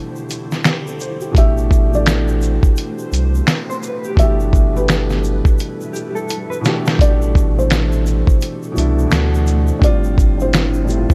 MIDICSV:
0, 0, Header, 1, 7, 480
1, 0, Start_track
1, 0, Key_signature, 0, "minor"
1, 0, Tempo, 705882
1, 917, Time_signature, 4, 2, 24, 8
1, 7576, End_track
2, 0, Start_track
2, 0, Title_t, "Felt piano"
2, 0, Program_c, 0, 0
2, 937, Note_on_c, 0, 76, 87
2, 1293, Note_off_c, 0, 76, 0
2, 1326, Note_on_c, 0, 74, 81
2, 1533, Note_off_c, 0, 74, 0
2, 2851, Note_on_c, 0, 76, 100
2, 3210, Note_off_c, 0, 76, 0
2, 3240, Note_on_c, 0, 71, 77
2, 3450, Note_off_c, 0, 71, 0
2, 4768, Note_on_c, 0, 74, 101
2, 5152, Note_off_c, 0, 74, 0
2, 5158, Note_on_c, 0, 72, 82
2, 5845, Note_off_c, 0, 72, 0
2, 6692, Note_on_c, 0, 74, 92
2, 7074, Note_off_c, 0, 74, 0
2, 7084, Note_on_c, 0, 72, 80
2, 7576, Note_off_c, 0, 72, 0
2, 7576, End_track
3, 0, Start_track
3, 0, Title_t, "Clean electric guitar"
3, 0, Program_c, 1, 27
3, 2514, Note_on_c, 1, 72, 83
3, 2597, Note_off_c, 1, 72, 0
3, 2600, Note_on_c, 1, 71, 84
3, 2741, Note_off_c, 1, 71, 0
3, 2752, Note_on_c, 1, 67, 76
3, 2977, Note_off_c, 1, 67, 0
3, 4034, Note_on_c, 1, 67, 70
3, 4177, Note_off_c, 1, 67, 0
3, 4183, Note_on_c, 1, 69, 74
3, 4413, Note_off_c, 1, 69, 0
3, 4420, Note_on_c, 1, 71, 85
3, 4511, Note_off_c, 1, 71, 0
3, 4511, Note_on_c, 1, 69, 79
3, 4656, Note_off_c, 1, 69, 0
3, 4658, Note_on_c, 1, 67, 72
3, 4890, Note_off_c, 1, 67, 0
3, 7576, End_track
4, 0, Start_track
4, 0, Title_t, "Ambient pad"
4, 0, Program_c, 2, 92
4, 0, Note_on_c, 2, 50, 72
4, 0, Note_on_c, 2, 64, 69
4, 0, Note_on_c, 2, 67, 71
4, 0, Note_on_c, 2, 72, 67
4, 898, Note_off_c, 2, 50, 0
4, 898, Note_off_c, 2, 72, 0
4, 899, Note_off_c, 2, 64, 0
4, 915, Note_on_c, 2, 57, 69
4, 915, Note_on_c, 2, 71, 69
4, 916, Note_on_c, 2, 72, 89
4, 2809, Note_off_c, 2, 67, 0
4, 2817, Note_off_c, 2, 57, 0
4, 2817, Note_off_c, 2, 72, 0
4, 2834, Note_on_c, 2, 64, 69
4, 2834, Note_on_c, 2, 69, 66
4, 2836, Note_on_c, 2, 55, 72
4, 2836, Note_on_c, 2, 76, 87
4, 4729, Note_off_c, 2, 71, 0
4, 4736, Note_off_c, 2, 64, 0
4, 4737, Note_off_c, 2, 55, 0
4, 4737, Note_off_c, 2, 69, 0
4, 4738, Note_off_c, 2, 76, 0
4, 4752, Note_on_c, 2, 69, 70
4, 4752, Note_on_c, 2, 72, 84
4, 4753, Note_on_c, 2, 57, 77
4, 4754, Note_on_c, 2, 67, 67
4, 6180, Note_off_c, 2, 69, 0
4, 6181, Note_off_c, 2, 57, 0
4, 6181, Note_off_c, 2, 67, 0
4, 6194, Note_on_c, 2, 62, 77
4, 6674, Note_on_c, 2, 53, 71
4, 6675, Note_on_c, 2, 55, 74
4, 7576, Note_off_c, 2, 53, 0
4, 7576, Note_off_c, 2, 55, 0
4, 7576, Note_off_c, 2, 62, 0
4, 7576, Note_off_c, 2, 72, 0
4, 7576, End_track
5, 0, Start_track
5, 0, Title_t, "Upright piano"
5, 0, Program_c, 3, 0
5, 0, Control_c, 3, 64, 127
5, 0, Note_on_c, 3, 47, 76
5, 0, Note_on_c, 3, 52, 61
5, 0, Note_on_c, 3, 57, 69
5, 0, Note_on_c, 3, 62, 73
5, 0, Note_on_c, 3, 65, 70
5, 0, Note_on_c, 3, 67, 82
5, 274, Note_off_c, 3, 47, 0
5, 281, Note_off_c, 3, 52, 0
5, 287, Note_off_c, 3, 57, 0
5, 292, Note_off_c, 3, 62, 0
5, 320, Note_off_c, 3, 67, 0
5, 445, Note_on_c, 3, 67, 62
5, 583, Note_off_c, 3, 67, 0
5, 583, Note_on_c, 3, 69, 59
5, 671, Note_off_c, 3, 69, 0
5, 688, Note_on_c, 3, 72, 74
5, 825, Note_off_c, 3, 72, 0
5, 825, Note_on_c, 3, 67, 62
5, 894, Note_on_c, 3, 47, 84
5, 903, Note_on_c, 3, 52, 84
5, 915, Note_on_c, 3, 57, 86
5, 925, Note_on_c, 3, 62, 85
5, 927, Control_c, 3, 64, 0
5, 928, Note_off_c, 3, 67, 0
5, 929, Note_off_c, 3, 65, 0
5, 939, Note_on_c, 3, 67, 107
5, 1062, Control_c, 3, 64, 127
5, 1269, Note_off_c, 3, 47, 0
5, 1274, Note_off_c, 3, 52, 0
5, 1280, Note_off_c, 3, 57, 0
5, 1285, Note_off_c, 3, 62, 0
5, 1286, Note_on_c, 3, 47, 81
5, 1291, Note_off_c, 3, 67, 0
5, 1298, Note_on_c, 3, 52, 69
5, 1309, Note_on_c, 3, 57, 62
5, 1323, Note_on_c, 3, 62, 67
5, 1335, Note_on_c, 3, 69, 73
5, 2188, Note_off_c, 3, 47, 0
5, 2194, Note_off_c, 3, 52, 0
5, 2200, Note_off_c, 3, 57, 0
5, 2206, Note_off_c, 3, 62, 0
5, 2212, Note_off_c, 3, 69, 0
5, 2823, Note_on_c, 3, 47, 89
5, 2835, Note_on_c, 3, 52, 83
5, 2845, Note_on_c, 3, 57, 80
5, 2847, Control_c, 3, 64, 0
5, 2857, Note_on_c, 3, 62, 83
5, 2871, Note_on_c, 3, 67, 104
5, 2974, Control_c, 3, 64, 127
5, 3194, Note_off_c, 3, 47, 0
5, 3200, Note_off_c, 3, 52, 0
5, 3205, Note_off_c, 3, 57, 0
5, 3210, Note_off_c, 3, 62, 0
5, 3216, Note_on_c, 3, 47, 78
5, 3217, Note_off_c, 3, 67, 0
5, 3230, Note_on_c, 3, 52, 68
5, 3240, Note_on_c, 3, 57, 66
5, 3250, Note_on_c, 3, 62, 64
5, 3264, Note_on_c, 3, 67, 82
5, 4113, Note_off_c, 3, 47, 0
5, 4120, Note_off_c, 3, 52, 0
5, 4125, Note_off_c, 3, 57, 0
5, 4130, Note_off_c, 3, 62, 0
5, 4137, Note_off_c, 3, 67, 0
5, 4496, Note_on_c, 3, 47, 93
5, 4509, Note_on_c, 3, 52, 81
5, 4523, Note_on_c, 3, 57, 85
5, 4533, Note_on_c, 3, 62, 79
5, 4544, Note_on_c, 3, 67, 101
5, 4725, Note_off_c, 3, 47, 0
5, 4735, Note_on_c, 3, 47, 86
5, 4739, Note_off_c, 3, 52, 0
5, 4747, Note_off_c, 3, 57, 0
5, 4749, Note_on_c, 3, 52, 85
5, 4755, Note_off_c, 3, 62, 0
5, 4757, Note_on_c, 3, 57, 88
5, 4760, Note_off_c, 3, 67, 0
5, 4766, Control_c, 3, 64, 0
5, 4770, Note_on_c, 3, 62, 86
5, 4782, Note_on_c, 3, 66, 78
5, 4825, Note_off_c, 3, 66, 0
5, 4828, Note_on_c, 3, 67, 97
5, 4900, Control_c, 3, 64, 127
5, 5110, Note_off_c, 3, 47, 0
5, 5117, Note_off_c, 3, 52, 0
5, 5121, Note_off_c, 3, 57, 0
5, 5127, Note_off_c, 3, 62, 0
5, 5132, Note_on_c, 3, 47, 66
5, 5145, Note_on_c, 3, 52, 58
5, 5156, Note_off_c, 3, 67, 0
5, 5156, Note_on_c, 3, 57, 62
5, 5167, Note_on_c, 3, 62, 61
5, 5179, Note_on_c, 3, 69, 68
5, 5913, Note_off_c, 3, 47, 0
5, 5920, Note_off_c, 3, 52, 0
5, 5926, Note_off_c, 3, 57, 0
5, 5930, Note_on_c, 3, 47, 82
5, 5931, Note_off_c, 3, 62, 0
5, 5937, Note_off_c, 3, 69, 0
5, 5944, Note_on_c, 3, 52, 77
5, 5952, Note_on_c, 3, 57, 82
5, 5966, Note_on_c, 3, 62, 87
5, 5977, Note_on_c, 3, 64, 94
5, 6159, Note_off_c, 3, 47, 0
5, 6169, Note_off_c, 3, 52, 0
5, 6169, Note_on_c, 3, 47, 92
5, 6180, Note_on_c, 3, 52, 80
5, 6181, Note_off_c, 3, 57, 0
5, 6192, Note_on_c, 3, 57, 84
5, 6193, Note_off_c, 3, 62, 0
5, 6203, Note_on_c, 3, 62, 85
5, 6206, Control_c, 3, 64, 0
5, 6207, Note_off_c, 3, 64, 0
5, 6216, Note_on_c, 3, 66, 97
5, 6341, Control_c, 3, 64, 127
5, 6642, Note_off_c, 3, 47, 0
5, 6648, Note_off_c, 3, 52, 0
5, 6654, Note_off_c, 3, 57, 0
5, 6657, Note_on_c, 3, 45, 83
5, 6659, Note_off_c, 3, 62, 0
5, 6666, Note_off_c, 3, 66, 0
5, 6669, Note_on_c, 3, 50, 92
5, 6681, Note_on_c, 3, 55, 88
5, 6686, Control_c, 3, 64, 0
5, 6692, Note_on_c, 3, 60, 81
5, 6704, Note_on_c, 3, 65, 112
5, 6816, Control_c, 3, 64, 127
5, 7031, Note_off_c, 3, 45, 0
5, 7037, Note_off_c, 3, 50, 0
5, 7042, Note_off_c, 3, 55, 0
5, 7048, Note_off_c, 3, 60, 0
5, 7054, Note_off_c, 3, 65, 0
5, 7054, Note_on_c, 3, 45, 71
5, 7067, Note_on_c, 3, 50, 61
5, 7077, Note_on_c, 3, 55, 64
5, 7089, Note_on_c, 3, 60, 64
5, 7102, Note_on_c, 3, 64, 72
5, 7366, Note_off_c, 3, 45, 0
5, 7376, Note_on_c, 3, 45, 72
5, 7378, Note_off_c, 3, 50, 0
5, 7387, Note_off_c, 3, 55, 0
5, 7388, Note_on_c, 3, 50, 66
5, 7393, Note_off_c, 3, 60, 0
5, 7399, Note_on_c, 3, 55, 71
5, 7400, Note_off_c, 3, 64, 0
5, 7411, Note_on_c, 3, 60, 64
5, 7423, Note_on_c, 3, 64, 71
5, 7465, Note_off_c, 3, 64, 0
5, 7467, Note_on_c, 3, 65, 85
5, 7576, Note_off_c, 3, 45, 0
5, 7576, Note_off_c, 3, 50, 0
5, 7576, Note_off_c, 3, 55, 0
5, 7576, Note_off_c, 3, 60, 0
5, 7576, Note_off_c, 3, 65, 0
5, 7576, End_track
6, 0, Start_track
6, 0, Title_t, "Sub bass"
6, 0, Program_c, 4, 38
6, 918, Note_on_c, 4, 33, 105
6, 1760, Note_off_c, 4, 33, 0
6, 2123, Note_on_c, 4, 36, 97
6, 2323, Note_off_c, 4, 36, 0
6, 2838, Note_on_c, 4, 31, 99
6, 3679, Note_off_c, 4, 31, 0
6, 4759, Note_on_c, 4, 33, 110
6, 5600, Note_off_c, 4, 33, 0
6, 5964, Note_on_c, 4, 36, 90
6, 6164, Note_off_c, 4, 36, 0
6, 6203, Note_on_c, 4, 38, 105
6, 6606, Note_off_c, 4, 38, 0
6, 6679, Note_on_c, 4, 31, 93
6, 7520, Note_off_c, 4, 31, 0
6, 7576, End_track
7, 0, Start_track
7, 0, Title_t, "Drums"
7, 107, Note_on_c, 9, 82, 39
7, 175, Note_off_c, 9, 82, 0
7, 199, Note_on_c, 9, 82, 45
7, 208, Note_off_c, 9, 82, 0
7, 208, Note_on_c, 9, 42, 49
7, 208, Note_on_c, 9, 82, 53
7, 276, Note_off_c, 9, 42, 0
7, 276, Note_off_c, 9, 82, 0
7, 349, Note_on_c, 9, 82, 49
7, 355, Note_on_c, 9, 38, 35
7, 417, Note_off_c, 9, 82, 0
7, 423, Note_off_c, 9, 38, 0
7, 438, Note_on_c, 9, 26, 85
7, 439, Note_on_c, 9, 82, 68
7, 444, Note_on_c, 9, 38, 106
7, 447, Note_on_c, 9, 42, 67
7, 506, Note_off_c, 9, 26, 0
7, 507, Note_off_c, 9, 82, 0
7, 512, Note_off_c, 9, 38, 0
7, 515, Note_off_c, 9, 42, 0
7, 593, Note_on_c, 9, 82, 56
7, 661, Note_off_c, 9, 82, 0
7, 676, Note_on_c, 9, 82, 44
7, 684, Note_off_c, 9, 82, 0
7, 684, Note_on_c, 9, 82, 45
7, 752, Note_off_c, 9, 82, 0
7, 821, Note_on_c, 9, 82, 51
7, 889, Note_off_c, 9, 82, 0
7, 916, Note_on_c, 9, 36, 110
7, 928, Note_on_c, 9, 42, 85
7, 929, Note_on_c, 9, 82, 62
7, 984, Note_off_c, 9, 36, 0
7, 996, Note_off_c, 9, 42, 0
7, 997, Note_off_c, 9, 82, 0
7, 1072, Note_on_c, 9, 82, 46
7, 1140, Note_off_c, 9, 82, 0
7, 1161, Note_on_c, 9, 36, 85
7, 1166, Note_on_c, 9, 82, 45
7, 1174, Note_off_c, 9, 82, 0
7, 1174, Note_on_c, 9, 82, 57
7, 1229, Note_off_c, 9, 36, 0
7, 1242, Note_off_c, 9, 82, 0
7, 1317, Note_on_c, 9, 82, 53
7, 1385, Note_off_c, 9, 82, 0
7, 1401, Note_on_c, 9, 42, 67
7, 1405, Note_on_c, 9, 26, 88
7, 1410, Note_on_c, 9, 38, 104
7, 1410, Note_on_c, 9, 82, 72
7, 1469, Note_off_c, 9, 42, 0
7, 1473, Note_off_c, 9, 26, 0
7, 1478, Note_off_c, 9, 38, 0
7, 1478, Note_off_c, 9, 82, 0
7, 1550, Note_on_c, 9, 82, 48
7, 1618, Note_off_c, 9, 82, 0
7, 1639, Note_on_c, 9, 82, 48
7, 1647, Note_off_c, 9, 82, 0
7, 1647, Note_on_c, 9, 82, 38
7, 1715, Note_off_c, 9, 82, 0
7, 1788, Note_on_c, 9, 36, 92
7, 1793, Note_on_c, 9, 82, 49
7, 1856, Note_off_c, 9, 36, 0
7, 1861, Note_off_c, 9, 82, 0
7, 1878, Note_on_c, 9, 82, 69
7, 1890, Note_on_c, 9, 42, 73
7, 1946, Note_off_c, 9, 82, 0
7, 1958, Note_off_c, 9, 42, 0
7, 2030, Note_on_c, 9, 82, 42
7, 2098, Note_off_c, 9, 82, 0
7, 2122, Note_on_c, 9, 82, 42
7, 2132, Note_off_c, 9, 82, 0
7, 2132, Note_on_c, 9, 42, 49
7, 2132, Note_on_c, 9, 82, 50
7, 2200, Note_off_c, 9, 42, 0
7, 2200, Note_off_c, 9, 82, 0
7, 2276, Note_on_c, 9, 82, 46
7, 2344, Note_off_c, 9, 82, 0
7, 2359, Note_on_c, 9, 26, 88
7, 2362, Note_on_c, 9, 82, 68
7, 2364, Note_on_c, 9, 38, 106
7, 2367, Note_on_c, 9, 42, 75
7, 2427, Note_off_c, 9, 26, 0
7, 2430, Note_off_c, 9, 82, 0
7, 2432, Note_off_c, 9, 38, 0
7, 2435, Note_off_c, 9, 42, 0
7, 2519, Note_on_c, 9, 82, 56
7, 2587, Note_off_c, 9, 82, 0
7, 2602, Note_on_c, 9, 82, 45
7, 2670, Note_off_c, 9, 82, 0
7, 2748, Note_on_c, 9, 82, 51
7, 2816, Note_off_c, 9, 82, 0
7, 2835, Note_on_c, 9, 36, 112
7, 2847, Note_on_c, 9, 42, 89
7, 2852, Note_on_c, 9, 82, 62
7, 2903, Note_off_c, 9, 36, 0
7, 2915, Note_off_c, 9, 42, 0
7, 2920, Note_off_c, 9, 82, 0
7, 2992, Note_on_c, 9, 82, 45
7, 3060, Note_off_c, 9, 82, 0
7, 3080, Note_on_c, 9, 36, 90
7, 3085, Note_on_c, 9, 82, 42
7, 3095, Note_off_c, 9, 82, 0
7, 3095, Note_on_c, 9, 82, 57
7, 3148, Note_off_c, 9, 36, 0
7, 3163, Note_off_c, 9, 82, 0
7, 3241, Note_on_c, 9, 82, 46
7, 3309, Note_off_c, 9, 82, 0
7, 3321, Note_on_c, 9, 42, 63
7, 3324, Note_on_c, 9, 26, 86
7, 3329, Note_on_c, 9, 38, 115
7, 3330, Note_on_c, 9, 82, 69
7, 3389, Note_off_c, 9, 42, 0
7, 3392, Note_off_c, 9, 26, 0
7, 3397, Note_off_c, 9, 38, 0
7, 3398, Note_off_c, 9, 82, 0
7, 3467, Note_on_c, 9, 82, 44
7, 3472, Note_on_c, 9, 38, 36
7, 3535, Note_off_c, 9, 82, 0
7, 3540, Note_off_c, 9, 38, 0
7, 3561, Note_on_c, 9, 82, 47
7, 3565, Note_off_c, 9, 82, 0
7, 3565, Note_on_c, 9, 82, 36
7, 3633, Note_off_c, 9, 82, 0
7, 3706, Note_on_c, 9, 36, 96
7, 3713, Note_on_c, 9, 82, 44
7, 3774, Note_off_c, 9, 36, 0
7, 3781, Note_off_c, 9, 82, 0
7, 3798, Note_on_c, 9, 82, 69
7, 3810, Note_on_c, 9, 42, 64
7, 3866, Note_off_c, 9, 82, 0
7, 3878, Note_off_c, 9, 42, 0
7, 3950, Note_on_c, 9, 82, 42
7, 4018, Note_off_c, 9, 82, 0
7, 4037, Note_on_c, 9, 82, 46
7, 4049, Note_off_c, 9, 82, 0
7, 4049, Note_on_c, 9, 82, 45
7, 4117, Note_off_c, 9, 82, 0
7, 4189, Note_on_c, 9, 82, 44
7, 4257, Note_off_c, 9, 82, 0
7, 4275, Note_on_c, 9, 82, 66
7, 4287, Note_on_c, 9, 42, 77
7, 4343, Note_off_c, 9, 82, 0
7, 4355, Note_off_c, 9, 42, 0
7, 4435, Note_on_c, 9, 82, 54
7, 4503, Note_off_c, 9, 82, 0
7, 4519, Note_on_c, 9, 82, 42
7, 4521, Note_off_c, 9, 82, 0
7, 4521, Note_on_c, 9, 82, 46
7, 4527, Note_on_c, 9, 38, 95
7, 4589, Note_off_c, 9, 82, 0
7, 4595, Note_off_c, 9, 38, 0
7, 4663, Note_on_c, 9, 82, 52
7, 4676, Note_on_c, 9, 38, 93
7, 4731, Note_off_c, 9, 82, 0
7, 4744, Note_off_c, 9, 38, 0
7, 4755, Note_on_c, 9, 36, 116
7, 4765, Note_on_c, 9, 42, 91
7, 4770, Note_on_c, 9, 82, 60
7, 4823, Note_off_c, 9, 36, 0
7, 4833, Note_off_c, 9, 42, 0
7, 4838, Note_off_c, 9, 82, 0
7, 4908, Note_on_c, 9, 82, 48
7, 4976, Note_off_c, 9, 82, 0
7, 5000, Note_on_c, 9, 36, 86
7, 5005, Note_on_c, 9, 82, 45
7, 5017, Note_off_c, 9, 82, 0
7, 5017, Note_on_c, 9, 82, 54
7, 5068, Note_off_c, 9, 36, 0
7, 5085, Note_off_c, 9, 82, 0
7, 5161, Note_on_c, 9, 82, 52
7, 5229, Note_off_c, 9, 82, 0
7, 5238, Note_on_c, 9, 42, 62
7, 5241, Note_on_c, 9, 26, 83
7, 5246, Note_on_c, 9, 38, 101
7, 5249, Note_on_c, 9, 82, 67
7, 5306, Note_off_c, 9, 42, 0
7, 5309, Note_off_c, 9, 26, 0
7, 5314, Note_off_c, 9, 38, 0
7, 5317, Note_off_c, 9, 82, 0
7, 5387, Note_on_c, 9, 82, 47
7, 5455, Note_off_c, 9, 82, 0
7, 5479, Note_on_c, 9, 82, 45
7, 5484, Note_off_c, 9, 82, 0
7, 5484, Note_on_c, 9, 82, 39
7, 5552, Note_off_c, 9, 82, 0
7, 5626, Note_on_c, 9, 36, 92
7, 5637, Note_on_c, 9, 82, 47
7, 5694, Note_off_c, 9, 36, 0
7, 5705, Note_off_c, 9, 82, 0
7, 5718, Note_on_c, 9, 82, 67
7, 5728, Note_on_c, 9, 42, 71
7, 5786, Note_off_c, 9, 82, 0
7, 5796, Note_off_c, 9, 42, 0
7, 5868, Note_on_c, 9, 82, 37
7, 5936, Note_off_c, 9, 82, 0
7, 5958, Note_on_c, 9, 82, 48
7, 5971, Note_off_c, 9, 82, 0
7, 5971, Note_on_c, 9, 42, 50
7, 5971, Note_on_c, 9, 82, 48
7, 6039, Note_off_c, 9, 42, 0
7, 6039, Note_off_c, 9, 82, 0
7, 6112, Note_on_c, 9, 82, 47
7, 6180, Note_off_c, 9, 82, 0
7, 6195, Note_on_c, 9, 82, 69
7, 6199, Note_on_c, 9, 26, 86
7, 6204, Note_on_c, 9, 38, 107
7, 6207, Note_on_c, 9, 42, 70
7, 6263, Note_off_c, 9, 82, 0
7, 6267, Note_off_c, 9, 26, 0
7, 6272, Note_off_c, 9, 38, 0
7, 6275, Note_off_c, 9, 42, 0
7, 6355, Note_on_c, 9, 82, 57
7, 6423, Note_off_c, 9, 82, 0
7, 6435, Note_on_c, 9, 82, 45
7, 6442, Note_off_c, 9, 82, 0
7, 6442, Note_on_c, 9, 82, 51
7, 6510, Note_off_c, 9, 82, 0
7, 6577, Note_on_c, 9, 82, 53
7, 6645, Note_off_c, 9, 82, 0
7, 6676, Note_on_c, 9, 36, 113
7, 6686, Note_on_c, 9, 82, 62
7, 6688, Note_on_c, 9, 42, 86
7, 6744, Note_off_c, 9, 36, 0
7, 6754, Note_off_c, 9, 82, 0
7, 6756, Note_off_c, 9, 42, 0
7, 6825, Note_on_c, 9, 82, 46
7, 6893, Note_off_c, 9, 82, 0
7, 6921, Note_on_c, 9, 36, 94
7, 6928, Note_on_c, 9, 82, 45
7, 6930, Note_off_c, 9, 82, 0
7, 6930, Note_on_c, 9, 82, 55
7, 6989, Note_off_c, 9, 36, 0
7, 6998, Note_off_c, 9, 82, 0
7, 7072, Note_on_c, 9, 82, 49
7, 7140, Note_off_c, 9, 82, 0
7, 7162, Note_on_c, 9, 42, 65
7, 7164, Note_on_c, 9, 82, 74
7, 7165, Note_on_c, 9, 26, 89
7, 7171, Note_on_c, 9, 38, 111
7, 7230, Note_off_c, 9, 42, 0
7, 7232, Note_off_c, 9, 82, 0
7, 7233, Note_off_c, 9, 26, 0
7, 7239, Note_off_c, 9, 38, 0
7, 7301, Note_on_c, 9, 82, 44
7, 7369, Note_off_c, 9, 82, 0
7, 7396, Note_on_c, 9, 82, 45
7, 7408, Note_off_c, 9, 82, 0
7, 7408, Note_on_c, 9, 82, 39
7, 7476, Note_off_c, 9, 82, 0
7, 7548, Note_on_c, 9, 36, 89
7, 7548, Note_on_c, 9, 82, 47
7, 7576, Note_off_c, 9, 36, 0
7, 7576, Note_off_c, 9, 82, 0
7, 7576, End_track
0, 0, End_of_file